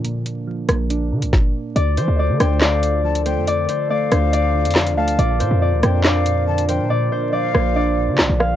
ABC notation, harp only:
X:1
M:4/4
L:1/8
Q:1/4=140
K:Dm
V:1 name="Harp"
z8 | d c d c d3 c | d c d c d3 f | d c d c d3 c |
d c d c d3 f |]